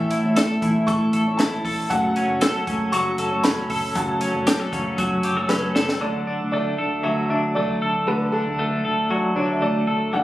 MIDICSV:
0, 0, Header, 1, 6, 480
1, 0, Start_track
1, 0, Key_signature, 2, "major"
1, 0, Tempo, 514139
1, 1778, Time_signature, 4, 2, 24, 8
1, 9556, End_track
2, 0, Start_track
2, 0, Title_t, "Upright piano"
2, 0, Program_c, 0, 0
2, 0, Note_on_c, 0, 76, 91
2, 810, Note_on_c, 0, 85, 105
2, 843, Note_off_c, 0, 76, 0
2, 1282, Note_on_c, 0, 81, 92
2, 1308, Note_off_c, 0, 85, 0
2, 1773, Note_on_c, 0, 78, 99
2, 1784, Note_off_c, 0, 81, 0
2, 2728, Note_on_c, 0, 85, 107
2, 2762, Note_off_c, 0, 78, 0
2, 3207, Note_on_c, 0, 83, 97
2, 3225, Note_off_c, 0, 85, 0
2, 3690, Note_on_c, 0, 81, 77
2, 3704, Note_off_c, 0, 83, 0
2, 5093, Note_off_c, 0, 81, 0
2, 5124, Note_on_c, 0, 71, 82
2, 5610, Note_on_c, 0, 74, 75
2, 5623, Note_off_c, 0, 71, 0
2, 6074, Note_off_c, 0, 74, 0
2, 6088, Note_on_c, 0, 74, 81
2, 6538, Note_off_c, 0, 74, 0
2, 6564, Note_on_c, 0, 76, 82
2, 6794, Note_off_c, 0, 76, 0
2, 6808, Note_on_c, 0, 76, 71
2, 6863, Note_off_c, 0, 76, 0
2, 7049, Note_on_c, 0, 74, 78
2, 7539, Note_on_c, 0, 71, 80
2, 7548, Note_off_c, 0, 74, 0
2, 7768, Note_on_c, 0, 69, 92
2, 7786, Note_off_c, 0, 71, 0
2, 8699, Note_off_c, 0, 69, 0
2, 8737, Note_on_c, 0, 73, 70
2, 8892, Note_on_c, 0, 76, 56
2, 8919, Note_off_c, 0, 73, 0
2, 8970, Note_off_c, 0, 76, 0
2, 8980, Note_on_c, 0, 74, 76
2, 9429, Note_off_c, 0, 74, 0
2, 9461, Note_on_c, 0, 78, 87
2, 9556, Note_off_c, 0, 78, 0
2, 9556, End_track
3, 0, Start_track
3, 0, Title_t, "Clean electric guitar"
3, 0, Program_c, 1, 27
3, 0, Note_on_c, 1, 45, 88
3, 0, Note_on_c, 1, 57, 65
3, 0, Note_on_c, 1, 69, 73
3, 104, Note_on_c, 1, 64, 57
3, 337, Note_off_c, 1, 69, 0
3, 341, Note_on_c, 1, 69, 77
3, 574, Note_off_c, 1, 64, 0
3, 585, Note_on_c, 1, 64, 54
3, 816, Note_off_c, 1, 57, 0
3, 820, Note_on_c, 1, 57, 68
3, 1055, Note_off_c, 1, 69, 0
3, 1058, Note_on_c, 1, 69, 57
3, 1290, Note_off_c, 1, 64, 0
3, 1301, Note_on_c, 1, 64, 59
3, 1537, Note_off_c, 1, 69, 0
3, 1541, Note_on_c, 1, 69, 73
3, 1773, Note_off_c, 1, 45, 0
3, 1777, Note_on_c, 1, 42, 84
3, 1827, Note_off_c, 1, 64, 0
3, 2020, Note_on_c, 1, 61, 64
3, 2252, Note_off_c, 1, 69, 0
3, 2256, Note_on_c, 1, 69, 77
3, 2487, Note_off_c, 1, 61, 0
3, 2498, Note_on_c, 1, 61, 50
3, 2734, Note_off_c, 1, 57, 0
3, 2738, Note_on_c, 1, 54, 71
3, 2975, Note_off_c, 1, 69, 0
3, 2978, Note_on_c, 1, 69, 57
3, 3208, Note_off_c, 1, 61, 0
3, 3219, Note_on_c, 1, 61, 54
3, 3453, Note_off_c, 1, 69, 0
3, 3457, Note_on_c, 1, 69, 71
3, 3681, Note_off_c, 1, 42, 0
3, 3692, Note_on_c, 1, 42, 89
3, 3922, Note_off_c, 1, 61, 0
3, 3933, Note_on_c, 1, 61, 59
3, 4170, Note_off_c, 1, 69, 0
3, 4173, Note_on_c, 1, 67, 75
3, 4292, Note_off_c, 1, 67, 0
3, 4292, Note_on_c, 1, 69, 53
3, 4401, Note_off_c, 1, 61, 0
3, 4412, Note_on_c, 1, 61, 54
3, 4651, Note_off_c, 1, 54, 0
3, 4655, Note_on_c, 1, 54, 65
3, 4891, Note_off_c, 1, 69, 0
3, 4895, Note_on_c, 1, 67, 57
3, 5011, Note_off_c, 1, 67, 0
3, 5011, Note_on_c, 1, 69, 60
3, 5121, Note_off_c, 1, 61, 0
3, 5132, Note_on_c, 1, 61, 54
3, 5357, Note_off_c, 1, 69, 0
3, 5368, Note_on_c, 1, 69, 71
3, 5610, Note_on_c, 1, 50, 67
3, 5611, Note_off_c, 1, 42, 0
3, 5661, Note_off_c, 1, 61, 0
3, 5856, Note_on_c, 1, 62, 51
3, 6099, Note_on_c, 1, 57, 50
3, 6331, Note_off_c, 1, 69, 0
3, 6335, Note_on_c, 1, 69, 49
3, 6570, Note_off_c, 1, 54, 0
3, 6574, Note_on_c, 1, 54, 54
3, 6813, Note_off_c, 1, 62, 0
3, 6817, Note_on_c, 1, 62, 45
3, 7049, Note_off_c, 1, 57, 0
3, 7060, Note_on_c, 1, 57, 44
3, 7289, Note_off_c, 1, 69, 0
3, 7300, Note_on_c, 1, 69, 57
3, 7539, Note_off_c, 1, 50, 0
3, 7542, Note_on_c, 1, 50, 74
3, 7780, Note_off_c, 1, 62, 0
3, 7784, Note_on_c, 1, 62, 49
3, 8008, Note_off_c, 1, 57, 0
3, 8020, Note_on_c, 1, 57, 58
3, 8248, Note_off_c, 1, 69, 0
3, 8259, Note_on_c, 1, 69, 48
3, 8490, Note_off_c, 1, 54, 0
3, 8501, Note_on_c, 1, 54, 61
3, 8735, Note_off_c, 1, 62, 0
3, 8738, Note_on_c, 1, 62, 44
3, 8970, Note_off_c, 1, 57, 0
3, 8981, Note_on_c, 1, 57, 44
3, 9208, Note_off_c, 1, 69, 0
3, 9220, Note_on_c, 1, 69, 54
3, 9457, Note_on_c, 1, 43, 77
3, 9510, Note_off_c, 1, 69, 0
3, 9512, Note_off_c, 1, 57, 0
3, 9513, Note_off_c, 1, 54, 0
3, 9556, Note_off_c, 1, 43, 0
3, 9556, Note_off_c, 1, 50, 0
3, 9556, Note_off_c, 1, 62, 0
3, 9556, End_track
4, 0, Start_track
4, 0, Title_t, "Steel-string acoustic guitar"
4, 0, Program_c, 2, 25
4, 0, Note_on_c, 2, 45, 82
4, 0, Note_on_c, 2, 52, 84
4, 0, Note_on_c, 2, 57, 86
4, 0, Note_on_c, 2, 61, 93
4, 0, Note_on_c, 2, 64, 93
4, 0, Note_on_c, 2, 69, 87
4, 209, Note_off_c, 2, 69, 0
4, 216, Note_off_c, 2, 64, 0
4, 219, Note_off_c, 2, 45, 0
4, 220, Note_on_c, 2, 69, 52
4, 221, Note_off_c, 2, 52, 0
4, 222, Note_off_c, 2, 57, 0
4, 224, Note_off_c, 2, 61, 0
4, 227, Note_on_c, 2, 64, 53
4, 233, Note_on_c, 2, 61, 49
4, 236, Note_on_c, 2, 57, 45
4, 569, Note_off_c, 2, 57, 0
4, 570, Note_off_c, 2, 61, 0
4, 570, Note_on_c, 2, 45, 89
4, 573, Note_off_c, 2, 64, 0
4, 578, Note_on_c, 2, 52, 88
4, 580, Note_off_c, 2, 69, 0
4, 580, Note_on_c, 2, 57, 99
4, 581, Note_on_c, 2, 61, 96
4, 584, Note_on_c, 2, 64, 96
4, 590, Note_on_c, 2, 69, 90
4, 803, Note_off_c, 2, 57, 0
4, 814, Note_on_c, 2, 57, 67
4, 815, Note_off_c, 2, 45, 0
4, 815, Note_off_c, 2, 61, 0
4, 818, Note_off_c, 2, 52, 0
4, 818, Note_off_c, 2, 64, 0
4, 824, Note_off_c, 2, 69, 0
4, 826, Note_on_c, 2, 61, 64
4, 830, Note_on_c, 2, 64, 78
4, 836, Note_on_c, 2, 69, 69
4, 1156, Note_off_c, 2, 69, 0
4, 1163, Note_off_c, 2, 64, 0
4, 1167, Note_on_c, 2, 69, 52
4, 1172, Note_off_c, 2, 61, 0
4, 1173, Note_off_c, 2, 57, 0
4, 1174, Note_on_c, 2, 64, 54
4, 1183, Note_on_c, 2, 61, 50
4, 1185, Note_on_c, 2, 57, 49
4, 1399, Note_off_c, 2, 69, 0
4, 1405, Note_off_c, 2, 64, 0
4, 1410, Note_on_c, 2, 69, 55
4, 1411, Note_off_c, 2, 61, 0
4, 1416, Note_on_c, 2, 64, 51
4, 1421, Note_off_c, 2, 57, 0
4, 1422, Note_on_c, 2, 61, 46
4, 1431, Note_on_c, 2, 57, 43
4, 1759, Note_off_c, 2, 57, 0
4, 1763, Note_off_c, 2, 61, 0
4, 1764, Note_on_c, 2, 42, 81
4, 1766, Note_off_c, 2, 69, 0
4, 1770, Note_on_c, 2, 49, 84
4, 1770, Note_on_c, 2, 57, 86
4, 1771, Note_off_c, 2, 64, 0
4, 1772, Note_on_c, 2, 54, 90
4, 1774, Note_on_c, 2, 61, 94
4, 1777, Note_on_c, 2, 69, 94
4, 2117, Note_off_c, 2, 69, 0
4, 2126, Note_off_c, 2, 61, 0
4, 2129, Note_off_c, 2, 57, 0
4, 2129, Note_on_c, 2, 69, 53
4, 2130, Note_off_c, 2, 42, 0
4, 2133, Note_off_c, 2, 49, 0
4, 2134, Note_off_c, 2, 54, 0
4, 2137, Note_on_c, 2, 61, 52
4, 2140, Note_on_c, 2, 57, 50
4, 2147, Note_on_c, 2, 54, 44
4, 2477, Note_off_c, 2, 54, 0
4, 2479, Note_off_c, 2, 57, 0
4, 2480, Note_on_c, 2, 42, 77
4, 2484, Note_off_c, 2, 69, 0
4, 2485, Note_on_c, 2, 49, 87
4, 2486, Note_off_c, 2, 61, 0
4, 2488, Note_on_c, 2, 54, 87
4, 2490, Note_on_c, 2, 57, 98
4, 2495, Note_on_c, 2, 69, 96
4, 2497, Note_on_c, 2, 61, 92
4, 2711, Note_off_c, 2, 54, 0
4, 2719, Note_off_c, 2, 57, 0
4, 2722, Note_on_c, 2, 54, 66
4, 2727, Note_off_c, 2, 42, 0
4, 2727, Note_off_c, 2, 61, 0
4, 2730, Note_off_c, 2, 49, 0
4, 2730, Note_on_c, 2, 57, 66
4, 2735, Note_off_c, 2, 69, 0
4, 2739, Note_on_c, 2, 61, 71
4, 2745, Note_on_c, 2, 69, 70
4, 3070, Note_off_c, 2, 69, 0
4, 3078, Note_off_c, 2, 61, 0
4, 3081, Note_on_c, 2, 69, 57
4, 3086, Note_off_c, 2, 57, 0
4, 3088, Note_off_c, 2, 54, 0
4, 3090, Note_on_c, 2, 61, 53
4, 3097, Note_on_c, 2, 57, 53
4, 3103, Note_on_c, 2, 54, 45
4, 3311, Note_off_c, 2, 69, 0
4, 3322, Note_off_c, 2, 61, 0
4, 3322, Note_on_c, 2, 69, 54
4, 3328, Note_off_c, 2, 57, 0
4, 3332, Note_off_c, 2, 54, 0
4, 3333, Note_on_c, 2, 61, 55
4, 3340, Note_on_c, 2, 57, 48
4, 3343, Note_on_c, 2, 54, 43
4, 3681, Note_off_c, 2, 54, 0
4, 3686, Note_off_c, 2, 61, 0
4, 3687, Note_off_c, 2, 57, 0
4, 3688, Note_off_c, 2, 69, 0
4, 3688, Note_on_c, 2, 42, 85
4, 3688, Note_on_c, 2, 49, 90
4, 3692, Note_on_c, 2, 54, 83
4, 3697, Note_on_c, 2, 61, 87
4, 3698, Note_on_c, 2, 57, 85
4, 3701, Note_on_c, 2, 69, 86
4, 4030, Note_off_c, 2, 69, 0
4, 4036, Note_off_c, 2, 61, 0
4, 4041, Note_on_c, 2, 69, 52
4, 4043, Note_off_c, 2, 57, 0
4, 4048, Note_on_c, 2, 61, 55
4, 4050, Note_off_c, 2, 42, 0
4, 4050, Note_off_c, 2, 49, 0
4, 4052, Note_off_c, 2, 54, 0
4, 4054, Note_on_c, 2, 57, 46
4, 4062, Note_on_c, 2, 54, 45
4, 4393, Note_off_c, 2, 57, 0
4, 4395, Note_off_c, 2, 54, 0
4, 4400, Note_off_c, 2, 61, 0
4, 4400, Note_on_c, 2, 42, 95
4, 4401, Note_off_c, 2, 69, 0
4, 4404, Note_on_c, 2, 49, 96
4, 4405, Note_on_c, 2, 57, 84
4, 4406, Note_on_c, 2, 54, 89
4, 4411, Note_on_c, 2, 61, 86
4, 4413, Note_on_c, 2, 69, 98
4, 4627, Note_off_c, 2, 54, 0
4, 4634, Note_off_c, 2, 57, 0
4, 4638, Note_on_c, 2, 54, 77
4, 4641, Note_off_c, 2, 61, 0
4, 4643, Note_off_c, 2, 69, 0
4, 4645, Note_on_c, 2, 57, 72
4, 4646, Note_off_c, 2, 42, 0
4, 4648, Note_off_c, 2, 49, 0
4, 4652, Note_on_c, 2, 61, 77
4, 4654, Note_on_c, 2, 69, 84
4, 4983, Note_off_c, 2, 69, 0
4, 4993, Note_off_c, 2, 61, 0
4, 4995, Note_on_c, 2, 69, 59
4, 5000, Note_off_c, 2, 57, 0
4, 5004, Note_on_c, 2, 61, 61
4, 5005, Note_off_c, 2, 54, 0
4, 5011, Note_on_c, 2, 57, 52
4, 5015, Note_on_c, 2, 54, 51
4, 5223, Note_off_c, 2, 69, 0
4, 5232, Note_off_c, 2, 61, 0
4, 5234, Note_on_c, 2, 69, 63
4, 5236, Note_off_c, 2, 57, 0
4, 5243, Note_on_c, 2, 61, 54
4, 5246, Note_off_c, 2, 54, 0
4, 5247, Note_on_c, 2, 57, 52
4, 5257, Note_on_c, 2, 54, 53
4, 5590, Note_off_c, 2, 54, 0
4, 5592, Note_off_c, 2, 57, 0
4, 5595, Note_on_c, 2, 50, 68
4, 5597, Note_off_c, 2, 69, 0
4, 5601, Note_on_c, 2, 54, 69
4, 5603, Note_on_c, 2, 57, 71
4, 5606, Note_off_c, 2, 61, 0
4, 5608, Note_on_c, 2, 69, 78
4, 5609, Note_on_c, 2, 62, 67
4, 6310, Note_off_c, 2, 69, 0
4, 6321, Note_on_c, 2, 69, 43
4, 6327, Note_off_c, 2, 54, 0
4, 6329, Note_off_c, 2, 57, 0
4, 6330, Note_off_c, 2, 62, 0
4, 6333, Note_on_c, 2, 62, 34
4, 6339, Note_on_c, 2, 57, 31
4, 6565, Note_off_c, 2, 57, 0
4, 6566, Note_on_c, 2, 54, 51
4, 6568, Note_off_c, 2, 69, 0
4, 6571, Note_off_c, 2, 62, 0
4, 6576, Note_on_c, 2, 57, 61
4, 6582, Note_on_c, 2, 62, 54
4, 6590, Note_on_c, 2, 69, 54
4, 7036, Note_off_c, 2, 54, 0
4, 7043, Note_off_c, 2, 57, 0
4, 7047, Note_on_c, 2, 54, 56
4, 7054, Note_on_c, 2, 57, 52
4, 7056, Note_off_c, 2, 69, 0
4, 7057, Note_off_c, 2, 62, 0
4, 7061, Note_on_c, 2, 62, 55
4, 7067, Note_on_c, 2, 69, 63
4, 7523, Note_off_c, 2, 50, 0
4, 7524, Note_off_c, 2, 54, 0
4, 7527, Note_on_c, 2, 50, 67
4, 7534, Note_off_c, 2, 57, 0
4, 7535, Note_on_c, 2, 54, 76
4, 7542, Note_off_c, 2, 69, 0
4, 7545, Note_on_c, 2, 57, 65
4, 7547, Note_off_c, 2, 62, 0
4, 7551, Note_on_c, 2, 62, 68
4, 7557, Note_on_c, 2, 69, 71
4, 8484, Note_off_c, 2, 54, 0
4, 8489, Note_off_c, 2, 57, 0
4, 8496, Note_on_c, 2, 54, 62
4, 8500, Note_on_c, 2, 57, 68
4, 8501, Note_off_c, 2, 62, 0
4, 8504, Note_off_c, 2, 69, 0
4, 8504, Note_on_c, 2, 62, 65
4, 8515, Note_on_c, 2, 69, 65
4, 8969, Note_off_c, 2, 54, 0
4, 8974, Note_off_c, 2, 57, 0
4, 8980, Note_on_c, 2, 54, 49
4, 8985, Note_on_c, 2, 57, 58
4, 8986, Note_off_c, 2, 69, 0
4, 8987, Note_off_c, 2, 62, 0
4, 8991, Note_on_c, 2, 62, 58
4, 8997, Note_on_c, 2, 69, 56
4, 9454, Note_on_c, 2, 43, 64
4, 9455, Note_off_c, 2, 50, 0
4, 9459, Note_on_c, 2, 50, 75
4, 9462, Note_off_c, 2, 54, 0
4, 9465, Note_off_c, 2, 57, 0
4, 9466, Note_on_c, 2, 55, 73
4, 9472, Note_off_c, 2, 69, 0
4, 9472, Note_on_c, 2, 58, 68
4, 9475, Note_off_c, 2, 62, 0
4, 9479, Note_on_c, 2, 62, 73
4, 9481, Note_on_c, 2, 70, 79
4, 9556, Note_off_c, 2, 43, 0
4, 9556, Note_off_c, 2, 50, 0
4, 9556, Note_off_c, 2, 55, 0
4, 9556, Note_off_c, 2, 58, 0
4, 9556, Note_off_c, 2, 62, 0
4, 9556, Note_off_c, 2, 70, 0
4, 9556, End_track
5, 0, Start_track
5, 0, Title_t, "Picked electric bass"
5, 0, Program_c, 3, 34
5, 223, Note_on_c, 3, 33, 94
5, 418, Note_off_c, 3, 33, 0
5, 580, Note_on_c, 3, 33, 104
5, 776, Note_off_c, 3, 33, 0
5, 820, Note_on_c, 3, 33, 96
5, 1016, Note_off_c, 3, 33, 0
5, 1058, Note_on_c, 3, 33, 111
5, 1255, Note_off_c, 3, 33, 0
5, 1294, Note_on_c, 3, 33, 127
5, 1492, Note_off_c, 3, 33, 0
5, 1537, Note_on_c, 3, 33, 104
5, 1734, Note_off_c, 3, 33, 0
5, 1777, Note_on_c, 3, 30, 106
5, 1973, Note_off_c, 3, 30, 0
5, 2130, Note_on_c, 3, 30, 84
5, 2329, Note_off_c, 3, 30, 0
5, 2498, Note_on_c, 3, 30, 95
5, 2693, Note_off_c, 3, 30, 0
5, 2729, Note_on_c, 3, 30, 99
5, 2928, Note_off_c, 3, 30, 0
5, 2972, Note_on_c, 3, 30, 103
5, 3169, Note_off_c, 3, 30, 0
5, 3217, Note_on_c, 3, 30, 109
5, 3412, Note_off_c, 3, 30, 0
5, 3454, Note_on_c, 3, 30, 93
5, 3651, Note_off_c, 3, 30, 0
5, 3697, Note_on_c, 3, 30, 107
5, 3892, Note_off_c, 3, 30, 0
5, 4054, Note_on_c, 3, 30, 98
5, 4250, Note_off_c, 3, 30, 0
5, 4414, Note_on_c, 3, 30, 97
5, 4610, Note_off_c, 3, 30, 0
5, 4652, Note_on_c, 3, 30, 94
5, 4849, Note_off_c, 3, 30, 0
5, 4893, Note_on_c, 3, 30, 107
5, 5089, Note_off_c, 3, 30, 0
5, 5132, Note_on_c, 3, 30, 107
5, 5329, Note_off_c, 3, 30, 0
5, 5378, Note_on_c, 3, 30, 101
5, 5572, Note_off_c, 3, 30, 0
5, 5614, Note_on_c, 3, 38, 84
5, 5810, Note_off_c, 3, 38, 0
5, 5985, Note_on_c, 3, 38, 74
5, 6079, Note_off_c, 3, 38, 0
5, 6103, Note_on_c, 3, 38, 80
5, 6296, Note_off_c, 3, 38, 0
5, 6340, Note_on_c, 3, 38, 83
5, 6535, Note_off_c, 3, 38, 0
5, 6579, Note_on_c, 3, 38, 87
5, 6774, Note_off_c, 3, 38, 0
5, 6820, Note_on_c, 3, 50, 77
5, 7059, Note_on_c, 3, 38, 93
5, 7073, Note_off_c, 3, 50, 0
5, 7255, Note_off_c, 3, 38, 0
5, 7298, Note_on_c, 3, 38, 75
5, 7494, Note_off_c, 3, 38, 0
5, 7539, Note_on_c, 3, 38, 87
5, 7735, Note_off_c, 3, 38, 0
5, 7902, Note_on_c, 3, 38, 75
5, 7999, Note_off_c, 3, 38, 0
5, 8023, Note_on_c, 3, 38, 74
5, 8218, Note_off_c, 3, 38, 0
5, 8260, Note_on_c, 3, 38, 77
5, 8457, Note_off_c, 3, 38, 0
5, 8497, Note_on_c, 3, 38, 77
5, 8696, Note_off_c, 3, 38, 0
5, 8733, Note_on_c, 3, 50, 80
5, 8934, Note_off_c, 3, 50, 0
5, 8976, Note_on_c, 3, 38, 98
5, 9176, Note_off_c, 3, 38, 0
5, 9216, Note_on_c, 3, 38, 84
5, 9417, Note_off_c, 3, 38, 0
5, 9463, Note_on_c, 3, 31, 97
5, 9556, Note_off_c, 3, 31, 0
5, 9556, End_track
6, 0, Start_track
6, 0, Title_t, "Drums"
6, 99, Note_on_c, 9, 42, 83
6, 192, Note_off_c, 9, 42, 0
6, 340, Note_on_c, 9, 42, 102
6, 347, Note_on_c, 9, 39, 91
6, 349, Note_on_c, 9, 38, 113
6, 433, Note_off_c, 9, 42, 0
6, 441, Note_off_c, 9, 39, 0
6, 443, Note_off_c, 9, 38, 0
6, 580, Note_on_c, 9, 36, 102
6, 582, Note_on_c, 9, 42, 68
6, 673, Note_off_c, 9, 36, 0
6, 676, Note_off_c, 9, 42, 0
6, 820, Note_on_c, 9, 36, 100
6, 822, Note_on_c, 9, 42, 86
6, 913, Note_off_c, 9, 36, 0
6, 915, Note_off_c, 9, 42, 0
6, 1056, Note_on_c, 9, 42, 79
6, 1150, Note_off_c, 9, 42, 0
6, 1295, Note_on_c, 9, 42, 79
6, 1303, Note_on_c, 9, 39, 91
6, 1304, Note_on_c, 9, 38, 116
6, 1388, Note_off_c, 9, 42, 0
6, 1396, Note_off_c, 9, 39, 0
6, 1397, Note_off_c, 9, 38, 0
6, 1538, Note_on_c, 9, 36, 81
6, 1544, Note_on_c, 9, 46, 79
6, 1631, Note_off_c, 9, 36, 0
6, 1637, Note_off_c, 9, 46, 0
6, 1778, Note_on_c, 9, 36, 112
6, 1781, Note_on_c, 9, 42, 93
6, 1872, Note_off_c, 9, 36, 0
6, 1874, Note_off_c, 9, 42, 0
6, 2016, Note_on_c, 9, 42, 75
6, 2109, Note_off_c, 9, 42, 0
6, 2252, Note_on_c, 9, 42, 108
6, 2261, Note_on_c, 9, 38, 101
6, 2261, Note_on_c, 9, 39, 91
6, 2345, Note_off_c, 9, 42, 0
6, 2355, Note_off_c, 9, 38, 0
6, 2355, Note_off_c, 9, 39, 0
6, 2495, Note_on_c, 9, 36, 93
6, 2497, Note_on_c, 9, 42, 74
6, 2589, Note_off_c, 9, 36, 0
6, 2590, Note_off_c, 9, 42, 0
6, 2734, Note_on_c, 9, 42, 92
6, 2827, Note_off_c, 9, 42, 0
6, 2971, Note_on_c, 9, 42, 81
6, 3065, Note_off_c, 9, 42, 0
6, 3208, Note_on_c, 9, 42, 79
6, 3216, Note_on_c, 9, 38, 113
6, 3224, Note_on_c, 9, 39, 92
6, 3301, Note_off_c, 9, 42, 0
6, 3310, Note_off_c, 9, 38, 0
6, 3318, Note_off_c, 9, 39, 0
6, 3453, Note_on_c, 9, 36, 85
6, 3453, Note_on_c, 9, 46, 76
6, 3546, Note_off_c, 9, 36, 0
6, 3546, Note_off_c, 9, 46, 0
6, 3692, Note_on_c, 9, 42, 93
6, 3693, Note_on_c, 9, 36, 101
6, 3785, Note_off_c, 9, 42, 0
6, 3786, Note_off_c, 9, 36, 0
6, 3929, Note_on_c, 9, 42, 80
6, 4022, Note_off_c, 9, 42, 0
6, 4171, Note_on_c, 9, 42, 108
6, 4177, Note_on_c, 9, 39, 93
6, 4180, Note_on_c, 9, 38, 109
6, 4264, Note_off_c, 9, 42, 0
6, 4270, Note_off_c, 9, 39, 0
6, 4274, Note_off_c, 9, 38, 0
6, 4413, Note_on_c, 9, 36, 95
6, 4416, Note_on_c, 9, 42, 69
6, 4506, Note_off_c, 9, 36, 0
6, 4510, Note_off_c, 9, 42, 0
6, 4650, Note_on_c, 9, 42, 81
6, 4652, Note_on_c, 9, 36, 103
6, 4744, Note_off_c, 9, 42, 0
6, 4746, Note_off_c, 9, 36, 0
6, 4886, Note_on_c, 9, 42, 82
6, 4980, Note_off_c, 9, 42, 0
6, 5131, Note_on_c, 9, 39, 93
6, 5132, Note_on_c, 9, 38, 62
6, 5225, Note_off_c, 9, 38, 0
6, 5225, Note_off_c, 9, 39, 0
6, 5375, Note_on_c, 9, 38, 95
6, 5469, Note_off_c, 9, 38, 0
6, 5497, Note_on_c, 9, 38, 83
6, 5590, Note_off_c, 9, 38, 0
6, 9556, End_track
0, 0, End_of_file